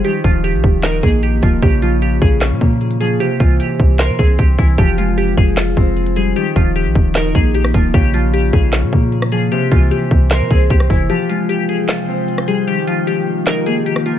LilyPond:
<<
  \new Staff \with { instrumentName = "Synth pluck" } { \time 4/4 \key f \minor \tempo 4 = 152 g'8 f'8 g'4 bes'8 aes'8 g'8 f'8 | g'8 f'8 g'8 aes'2 aes'8 | g'8 f'8 g'4 bes'8 aes'8 g'8 e'8 | g'8 f'8 g'8 aes'2 aes'8 |
g'8 f'8 g'4 bes'8 aes'8 g'8 f'8 | g'8 f'8 g'8 aes'2 aes'8 | g'8 f'8 g'4 bes'8 aes'8 g'8 e'8 | g'8 f'8 g'8 aes'2 aes'8 |
g'8 f'8 g'4 bes'8 aes'8 g'8 f'8 | }
  \new Staff \with { instrumentName = "Ambient pad" } { \time 4/4 \key f \minor r1 | r1 | r1 | r1 |
r1 | r1 | r1 | <c aes f' g''>1 |
<ees bes f' g'>1 | }
  \new Staff \with { instrumentName = "Harp" } { \clef bass \time 4/4 \key f \minor ees8 f4. ees'8 bes4 f8 | des8 f4. des'8 bes4 f8 | c8 e4. c''8 c'4 e8 | f8 aes4. f'8 c'4 g8 |
ees8 f4. ees'8 bes4 f8 | des8 f4. des'8 bes4 f8 | c8 e4. c''8 c'4 e8 | f8 aes4. f'8 c'4 g8 |
ees8 f4. ees'8 bes4 f8 | }
  \new Staff \with { instrumentName = "808-style bass" } { \clef bass \time 4/4 \key f \minor r8 ees,,8. bes,,16 ees,,4 bes,,4 ees,,8 | bes,,4. bes,,8. bes,16 bes,4. | r8 c,8 r8 c,8. c16 c,8 c,8 c,8 | f,,4. f,,4 f,,4. |
r8 ees,,8. bes,,16 ees,,4 bes,,4 ees,,8 | bes,,4. bes,,8. bes,16 bes,4. | r8 c,8 r8 c,8. c16 c,8 c,8 f,,8 | r1 |
r1 | }
  \new DrumStaff \with { instrumentName = "Drums" } \drummode { \time 4/4 hh8 <hh bd>8 hh8 bd8 <hc hh sn>8 <hh bd>8 hh8 <hh bd>8 | <hh bd>8 hh8 hh8 bd8 <hc hh sn>8 bd8 hh16 hh16 hh8 | hh8 <hh bd>8 hh8 bd8 <hc hh sn>8 <hh bd>8 <hh bd>8 <hho bd>8 | <hh bd>8 hh8 hh8 bd8 <hc hh sn>8 bd8 hh16 hh16 hh8 |
hh8 <hh bd>8 hh8 bd8 <hc hh sn>8 <hh bd>8 hh16 ss16 <hh bd>8 | <hh bd>8 hh8 hh8 bd8 <hc hh sn>8 bd8 hh16 <hh ss>16 hh8 | hh8 <hh bd>8 hh8 bd8 <hc hh sn>8 <hh bd>8 <hh bd>16 ss16 <hho bd>8 | hh8 hh8 hh4 <hc hh sn>4 hh16 <hh ss>16 hh8 |
hh8 hh8 hh4 <hc hh sn>8 hh8 hh16 ss16 hh8 | }
>>